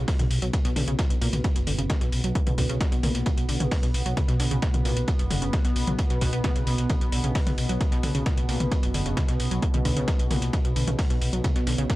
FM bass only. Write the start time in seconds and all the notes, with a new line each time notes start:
0.19 B1
0.31 B1
0.42 B1
0.65 B1
0.76 B1
0.88 B1
1.10 B1
1.22 B1
1.33 B1
1.56 F#1
1.67 F#1
1.79 F#1
2.01 B1
2.13 B1
2.24 B1
2.47 B1
2.58 B1
2.70 B1
2.92 B1
3.03 B1
3.15 B1
3.38 B1
3.49 B1
3.60 B1
3.83 B1
3.94 B1
4.06 B1
4.28 B1
4.40 B1
4.51 B1
4.74 B1
4.85 B1
4.97 B1
5.19 F#1
5.31 F#1
5.42 F#1
5.65 B1
5.76 B1
5.87 B1
6.10 B1
6.21 B1
6.33 B1
6.56 B1
6.67 B1
6.78 B1
7.01 B1
7.12 B1
7.24 B1
7.47 B1
7.58 B1
7.69 B1
7.92 B1
8.03 B1
8.15 B1
8.38 B1
8.49 B1
8.60 B1
8.83 F#1
8.94 F#1
9.06 F#1
9.28 B1
9.40 B1
9.51 B1
9.74 B1
9.85 B1
9.97 B1
10.19 B1
10.31 B1
10.42 B1
10.65 B1
10.76 B1
10.88 B1
11.10 B1
11.22 B1
11.33 B1
11.56 B1
11.67 B1
11.78 B1